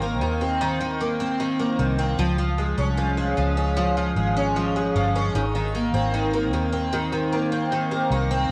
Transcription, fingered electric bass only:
0, 0, Header, 1, 2, 480
1, 0, Start_track
1, 0, Key_signature, -4, "major"
1, 0, Tempo, 789474
1, 1331, Time_signature, 4, 2, 24, 8
1, 5177, End_track
2, 0, Start_track
2, 0, Title_t, "Fingered electric bass"
2, 0, Program_c, 0, 33
2, 0, Note_on_c, 0, 32, 80
2, 127, Note_off_c, 0, 32, 0
2, 127, Note_on_c, 0, 39, 79
2, 1065, Note_off_c, 0, 39, 0
2, 1089, Note_on_c, 0, 36, 73
2, 1318, Note_off_c, 0, 36, 0
2, 1330, Note_on_c, 0, 37, 86
2, 1673, Note_off_c, 0, 37, 0
2, 1688, Note_on_c, 0, 36, 71
2, 2031, Note_off_c, 0, 36, 0
2, 2052, Note_on_c, 0, 37, 76
2, 2507, Note_off_c, 0, 37, 0
2, 2528, Note_on_c, 0, 32, 72
2, 2985, Note_off_c, 0, 32, 0
2, 3012, Note_on_c, 0, 31, 81
2, 3239, Note_off_c, 0, 31, 0
2, 3251, Note_on_c, 0, 32, 89
2, 3593, Note_off_c, 0, 32, 0
2, 3608, Note_on_c, 0, 32, 78
2, 3969, Note_off_c, 0, 32, 0
2, 3969, Note_on_c, 0, 39, 78
2, 4906, Note_off_c, 0, 39, 0
2, 4926, Note_on_c, 0, 36, 75
2, 5156, Note_off_c, 0, 36, 0
2, 5177, End_track
0, 0, End_of_file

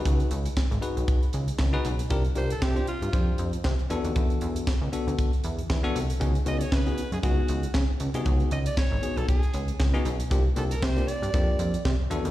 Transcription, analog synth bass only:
0, 0, Header, 1, 2, 480
1, 0, Start_track
1, 0, Tempo, 512821
1, 50, Time_signature, 4, 2, 24, 8
1, 11520, End_track
2, 0, Start_track
2, 0, Title_t, "Analog synth bass"
2, 0, Program_c, 0, 38
2, 52, Note_on_c, 0, 37, 108
2, 219, Note_off_c, 0, 37, 0
2, 290, Note_on_c, 0, 37, 101
2, 458, Note_off_c, 0, 37, 0
2, 667, Note_on_c, 0, 32, 102
2, 740, Note_off_c, 0, 32, 0
2, 905, Note_on_c, 0, 35, 91
2, 979, Note_off_c, 0, 35, 0
2, 1253, Note_on_c, 0, 37, 92
2, 1420, Note_off_c, 0, 37, 0
2, 1491, Note_on_c, 0, 37, 95
2, 1659, Note_off_c, 0, 37, 0
2, 1734, Note_on_c, 0, 35, 99
2, 1900, Note_off_c, 0, 35, 0
2, 1970, Note_on_c, 0, 36, 109
2, 2138, Note_off_c, 0, 36, 0
2, 2212, Note_on_c, 0, 36, 103
2, 2379, Note_off_c, 0, 36, 0
2, 2452, Note_on_c, 0, 48, 87
2, 2619, Note_off_c, 0, 48, 0
2, 2828, Note_on_c, 0, 43, 83
2, 2901, Note_off_c, 0, 43, 0
2, 2932, Note_on_c, 0, 41, 85
2, 3100, Note_off_c, 0, 41, 0
2, 3174, Note_on_c, 0, 41, 94
2, 3341, Note_off_c, 0, 41, 0
2, 3413, Note_on_c, 0, 48, 90
2, 3506, Note_off_c, 0, 48, 0
2, 3654, Note_on_c, 0, 40, 93
2, 3746, Note_off_c, 0, 40, 0
2, 3788, Note_on_c, 0, 39, 87
2, 3860, Note_off_c, 0, 39, 0
2, 3893, Note_on_c, 0, 40, 102
2, 4060, Note_off_c, 0, 40, 0
2, 4133, Note_on_c, 0, 40, 104
2, 4300, Note_off_c, 0, 40, 0
2, 4507, Note_on_c, 0, 37, 88
2, 4580, Note_off_c, 0, 37, 0
2, 4747, Note_on_c, 0, 38, 92
2, 4820, Note_off_c, 0, 38, 0
2, 5096, Note_on_c, 0, 40, 95
2, 5262, Note_off_c, 0, 40, 0
2, 5334, Note_on_c, 0, 40, 100
2, 5501, Note_off_c, 0, 40, 0
2, 5572, Note_on_c, 0, 36, 100
2, 5739, Note_off_c, 0, 36, 0
2, 5813, Note_on_c, 0, 37, 116
2, 5980, Note_off_c, 0, 37, 0
2, 6050, Note_on_c, 0, 37, 102
2, 6218, Note_off_c, 0, 37, 0
2, 6291, Note_on_c, 0, 49, 95
2, 6458, Note_off_c, 0, 49, 0
2, 6664, Note_on_c, 0, 42, 82
2, 6738, Note_off_c, 0, 42, 0
2, 6772, Note_on_c, 0, 37, 85
2, 6939, Note_off_c, 0, 37, 0
2, 7011, Note_on_c, 0, 37, 95
2, 7179, Note_off_c, 0, 37, 0
2, 7251, Note_on_c, 0, 49, 95
2, 7345, Note_off_c, 0, 49, 0
2, 7491, Note_on_c, 0, 37, 91
2, 7585, Note_off_c, 0, 37, 0
2, 7623, Note_on_c, 0, 36, 78
2, 7697, Note_off_c, 0, 36, 0
2, 7731, Note_on_c, 0, 37, 103
2, 7899, Note_off_c, 0, 37, 0
2, 7970, Note_on_c, 0, 37, 106
2, 8138, Note_off_c, 0, 37, 0
2, 8342, Note_on_c, 0, 32, 108
2, 8417, Note_off_c, 0, 32, 0
2, 8585, Note_on_c, 0, 35, 88
2, 8658, Note_off_c, 0, 35, 0
2, 8932, Note_on_c, 0, 37, 90
2, 9099, Note_off_c, 0, 37, 0
2, 9173, Note_on_c, 0, 37, 96
2, 9340, Note_off_c, 0, 37, 0
2, 9411, Note_on_c, 0, 35, 106
2, 9578, Note_off_c, 0, 35, 0
2, 9651, Note_on_c, 0, 36, 110
2, 9819, Note_off_c, 0, 36, 0
2, 9891, Note_on_c, 0, 36, 115
2, 10058, Note_off_c, 0, 36, 0
2, 10132, Note_on_c, 0, 48, 97
2, 10299, Note_off_c, 0, 48, 0
2, 10505, Note_on_c, 0, 43, 90
2, 10579, Note_off_c, 0, 43, 0
2, 10612, Note_on_c, 0, 41, 98
2, 10779, Note_off_c, 0, 41, 0
2, 10851, Note_on_c, 0, 41, 89
2, 11018, Note_off_c, 0, 41, 0
2, 11093, Note_on_c, 0, 48, 91
2, 11186, Note_off_c, 0, 48, 0
2, 11331, Note_on_c, 0, 40, 103
2, 11425, Note_off_c, 0, 40, 0
2, 11466, Note_on_c, 0, 39, 104
2, 11520, Note_off_c, 0, 39, 0
2, 11520, End_track
0, 0, End_of_file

